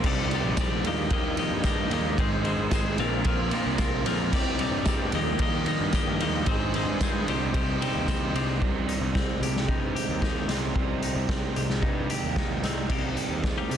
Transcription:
Already playing: tonewheel organ C6
0.04 picked electric bass C2, clean electric guitar C3 G3 C4 D#4 G4 D5, tonewheel organ G4 D5 D#5, kick, crash
0.31 clean electric guitar C3 G3 C4 D#4 G4 D5, ride
0.44 picked electric bass A#1
0.57 clean electric guitar C3 G3 C4 D#4 G4 D5, kick, snare, ride, tambourine
0.84 picked electric bass D#2, clean electric guitar D#3 F3 A#3 D#4 G4 D#5, distorted electric guitar G3, tonewheel organ F5 A#5, ride
1.10 picked electric bass D#2, clean electric guitar D#3 F3 A#3 D#4 G4 D#5, distorted electric guitar G3, kick, ride
1.36 clean electric guitar D#3 F3 A#3 D#4 G4 D#5, distorted electric guitar G3, ride
1.51 picked electric bass G2
1.63 clean electric guitar D#3 F3 A#3 D#4 G4 D#5, distorted electric guitar G3, kick, snare, ride, tambourine
1.91 picked electric bass D#2, clean electric guitar D#3 F3 A#3 D#4 G4 D#5, distorted electric guitar G3, snare, ride
2.17 picked electric bass G#1, distorted electric guitar G#2 D#3, clean electric guitar G#3 C4 D#4 G#4 C5, tonewheel organ G#4 C5 C6, kick, ride
2.43 distorted electric guitar G#2 D#3, clean electric guitar G#3 C4 D#4 G#4 C5, ride
2.58 picked electric bass G#1
2.71 distorted electric guitar G#2 D#3, clean electric guitar G#3 C4 D#4 G#4 C5, kick, snare, ride, tambourine
2.98 picked electric bass A#1, distorted electric guitar A#2 F3, clean electric guitar A#3 C4 F4 A#4, tonewheel organ A#4 F5 C6, ride
3.24 picked electric bass A#1, distorted electric guitar A#2 F3, clean electric guitar A#3 C4 F4 A#4, kick, ride
3.51 distorted electric guitar A#2 F3, clean electric guitar A#3 C4 F4 A#4, ride
3.66 picked electric bass C2
3.78 distorted electric guitar A#2 F3, clean electric guitar A#3 C4 F4 A#4, kick, snare, ride, tambourine
4.06 picked electric bass A#1, distorted electric guitar A#2 F3, clean electric guitar A#3 C4 F4 A#4, snare, ride
4.32 picked electric bass C2, clean electric guitar C3 G3 C4 D#4 G4 D5, tonewheel organ D#5 G5 D6, kick, crash
4.59 clean electric guitar C3 G3 C4 D#4 G4 D5, ride
4.71 picked electric bass G2
4.85 clean electric guitar C3 G3 C4 D#4 G4 D5, kick, snare, ride, tambourine
5.12 picked electric bass D#2, clean electric guitar D#3 F3 A#3 D#4 G4 D#5, distorted electric guitar G3, tonewheel organ A#4 F5 D#6, ride
5.39 picked electric bass D#2, clean electric guitar D#3 F3 A#3 D#4 G4 D#5, distorted electric guitar G3, kick, ride
5.66 clean electric guitar D#3 F3 A#3 D#4 G4 D#5, distorted electric guitar G3, ride
5.81 picked electric bass G2
5.93 clean electric guitar D#3 F3 A#3 D#4 G4 D#5, distorted electric guitar G3, kick, snare, ride, tambourine
6.20 picked electric bass D#2, clean electric guitar D#3 F3 A#3 D#4 G4 D#5, distorted electric guitar G3, ride
6.46 picked electric bass G#1, distorted electric guitar G#2 D#3, clean electric guitar G#3 C4 D#4 G#4 C5, tonewheel organ C5 D#5 G#5, kick, ride
6.74 distorted electric guitar G#2 D#3, clean electric guitar G#3 C4 D#4 G#4 C5, ride
6.87 picked electric bass G2
7.00 distorted electric guitar G#2 D#3, clean electric guitar G#3 C4 D#4 G#4 C5, kick, snare, ride, tambourine
7.26 picked electric bass C2, clean electric guitar C3 G3 C4 D#4 G4, tonewheel organ G5, ride
7.30 clean electric guitar C5
7.54 picked electric bass C2, clean electric guitar C3 G3 C4 D#4 G4 C5, kick, ride
7.80 clean electric guitar C3 G3 C4 D#4 G4 C5, ride
7.95 picked electric bass D#2
8.08 clean electric guitar C3 G3 C4 D#4 G4 C5, kick, snare, ride, tambourine
8.35 picked electric bass C2, clean electric guitar C3 G3 C4 D#4 G4 C5, ride
8.61 picked electric bass C2, clean electric guitar C3, distorted electric guitar G3 C4 D#4, kick
8.88 clean electric guitar D#4, closed hi-hat
9.01 picked electric bass C2
9.15 clean electric guitar C4, kick, snare
9.40 picked electric bass C2, clean electric guitar G4, closed hi-hat
9.56 snare
9.68 picked electric bass G2, clean electric guitar D#4, kick
9.95 clean electric guitar G4, closed hi-hat
10.09 picked electric bass D#2
10.22 clean electric guitar D#4, kick, snare
10.48 picked electric bass C2, distorted electric guitar C3 G3 D#4, clean electric guitar C4, snare, closed hi-hat
10.75 picked electric bass C2, clean electric guitar C3, distorted electric guitar G3 C4 D#4, kick
11.03 clean electric guitar D#4, closed hi-hat
11.15 picked electric bass C2
11.29 clean electric guitar C4, kick, snare
11.56 picked electric bass C2, clean electric guitar G4, closed hi-hat
11.70 snare
11.82 picked electric bass G2, clean electric guitar D#4, kick
12.10 clean electric guitar G4, closed hi-hat
12.23 picked electric bass D#2
12.36 clean electric guitar D#4, kick, snare
12.63 picked electric bass C2, distorted electric guitar G3 D#4, clean electric guitar C4, snare, closed hi-hat
12.67 distorted electric guitar C3
12.89 picked electric bass C2, distorted electric guitar C3 C4, clean electric guitar G3 A#3 D#4 G4, kick, crash
13.17 closed hi-hat
13.29 picked electric bass D#2
13.44 kick, snare
13.58 clean electric guitar G3 A#3 D#4 G4
13.70 picked electric bass C3, closed hi-hat

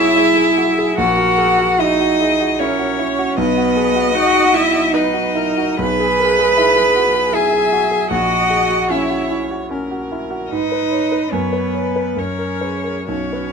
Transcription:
Already playing: grand piano B1 E4 F#4 G#4 A#4, cello E4, viola C#5, violin E5
0.16 grand piano E4, viola G#4
0.37 grand piano G#4
0.57 grand piano F#4
0.79 grand piano G#4
0.98 grand piano A#1, cello F#4, viola A#4, violin F#5
1.17 grand piano F#4
1.38 grand piano G#4
1.58 grand piano F#4
1.79 cello D#4, grand piano E4, viola F#4, violin D#5
2.00 grand piano F#4
2.20 grand piano E4, viola G#4
2.40 grand piano F#4
2.59 cello C#4, grand piano E4, viola A#4, violin C#5
2.79 grand piano F#4
2.99 grand piano E4, viola C#5
3.19 grand piano F#4
3.37 grand piano B1, cello B3, violin B4, viola D#5
3.57 grand piano F#4
3.77 grand piano G#4
3.95 grand piano F#4
4.15 grand piano D#4, cello F#4, violin F#5
4.34 grand piano F#4
4.53 grand piano E4, cello E4, violin E5
4.72 grand piano F#4
4.93 grand piano D#4, cello D#4, viola B4, violin D#5
5.13 grand piano F#4
5.35 grand piano E4, viola A#4
5.57 grand piano F#4
5.79 grand piano B1, viola G#4, cello B4, violin B5
6.00 grand piano G#4
6.19 grand piano A#4
6.39 grand piano G#4
6.57 grand piano E4, viola G#4
6.76 grand piano G#4
6.96 grand piano F#4
7.14 grand piano G#4
7.33 grand piano E4, cello G#4, viola E5, violin G#5
7.53 grand piano G#4
7.72 grand piano F#4
7.91 grand piano G#4
8.10 grand piano A#1, cello F#4, viola D#5, violin F#5
8.30 grand piano F#4
8.50 grand piano G#4
8.70 grand piano F#4
8.90 grand piano C#4, cello E4, viola C#5, violin E5
9.10 grand piano F#4
9.31 grand piano E4
9.51 grand piano F#4
9.71 grand piano C#4, viola A#4
9.91 grand piano F#4
10.12 grand piano E4
10.31 grand piano F#4
10.50 grand piano G#2, cello D#4, viola B4, violin D#5
10.72 grand piano B4
10.91 grand piano C#5
11.12 grand piano B4
11.32 grand piano F#2, cello B3, violin B4, viola C#5
11.53 grand piano B4
11.74 viola B4, grand piano C#5
11.96 grand piano B4
12.16 grand piano F#2, cello C#4, viola A#4, violin C#5
12.39 grand piano A#4
12.61 viola G#4, grand piano B4
12.84 grand piano A#4
13.08 grand piano B1, cello C#4, viola F#4, violin C#5
13.33 grand piano B4

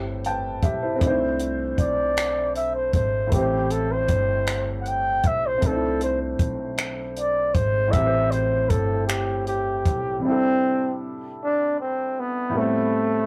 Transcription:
Already playing: upright bass G1, grand piano A2 A3 C4 G4 B4
0.24 grand piano B4 G5 A5, closed hi-hat
0.62 upright bass B1, grand piano G4 E5, kick, closed hi-hat
0.82 grand piano E4 C5
0.96 grand piano A3 C4
1.01 upright bass C2, grand piano D4 D#4, kick, closed hi-hat
1.07 grand piano E4 C5
1.39 closed hi-hat
1.78 upright bass B1, flugelhorn D5, kick, closed hi-hat
2.17 finger snap, closed hi-hat
2.55 flugelhorn E5, closed hi-hat
2.75 flugelhorn C5
2.93 upright bass G#1, flugelhorn C5, kick, closed hi-hat
3.27 grand piano A2 A3
3.32 upright bass A1, grand piano C4 G4, flugelhorn G4, kick, closed hi-hat
3.38 grand piano C5
3.70 flugelhorn A4, closed hi-hat
3.92 flugelhorn C5
4.08 upright bass G1, kick, closed hi-hat
4.47 finger snap, closed hi-hat
4.81 flugelhorn F#5
4.85 flugelhorn G5, closed hi-hat
5.23 upright bass B1, flugelhorn E5, kick, closed hi-hat
5.46 flugelhorn C5
5.58 grand piano A3 C4
5.62 upright bass C2, grand piano D4, kick, closed hi-hat
5.66 grand piano D#4 C5, flugelhorn A4
5.74 grand piano E4
6.01 flugelhorn C5, closed hi-hat
6.39 upright bass B1, kick, closed hi-hat
6.77 finger snap, closed hi-hat
7.16 flugelhorn D5, closed hi-hat
7.54 upright bass G#1, flugelhorn C5, kick, closed hi-hat
7.88 grand piano A2 A3, flugelhorn E5
7.93 upright bass A1, grand piano C4 G4, kick, closed hi-hat
7.99 grand piano A4
8.06 grand piano C5
8.31 flugelhorn C5, closed hi-hat
8.69 upright bass G1, flugelhorn A4, kick, closed hi-hat
9.07 flugelhorn G4, finger snap, closed hi-hat
9.47 flugelhorn G4, closed hi-hat
9.85 upright bass B1, kick, closed hi-hat
10.19 grand piano C3 G3
10.25 flugelhorn C4, grand piano D4 E4
10.31 grand piano A4
11.43 flugelhorn D4
11.80 flugelhorn C4
12.20 flugelhorn B3
12.49 grand piano A2 G3
12.55 flugelhorn A3, grand piano B3 C4
12.61 grand piano A4

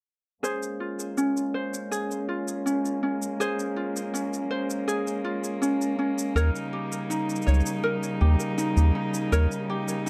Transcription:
0.43 string quartet G#3 A#3 C#4, ukulele G#4 C5, shaker
0.63 shaker
0.80 ukulele F4
1.00 shaker
1.17 ukulele C#4, shaker
1.37 shaker
1.54 ukulele C5
1.74 shaker
1.91 ukulele G#4, shaker
2.11 shaker
2.29 ukulele F4
2.48 shaker
2.66 ukulele C#4, shaker
2.85 shaker
3.03 ukulele C#4
3.22 shaker
3.40 ukulele G#4 C5, shaker
3.60 shaker
3.76 ukulele F4
3.97 shaker
4.14 ukulele C#4, shaker
4.33 shaker
4.51 ukulele C5
4.70 shaker
4.88 ukulele G#4, shaker
5.07 shaker
5.24 ukulele F4
5.44 shaker
5.62 ukulele C#4, shaker
5.82 shaker
5.99 ukulele C#4
6.19 shaker
6.36 analog synth bass D#2, string quartet C#3 G3 D#4, ukulele A#4 C#5, shaker
6.56 shaker
6.73 ukulele G4
6.92 shaker
7.10 ukulele D#4, shaker
7.30 shaker
7.36 shaker
7.42 shaker
7.47 analog synth bass C#2, ukulele C#5, shaker
7.54 shaker
7.60 shaker
7.66 shaker
7.84 ukulele A#4
8.03 shaker
8.21 analog synth bass D#2, ukulele G4
8.40 shaker
8.58 ukulele D#4, shaker
8.77 analog synth bass D#2, shaker
8.95 ukulele D#4
9.14 shaker
9.32 analog synth bass D#2, ukulele A#4 C#5, shaker
9.52 shaker
9.70 ukulele G4
9.88 shaker
10.06 ukulele D#4

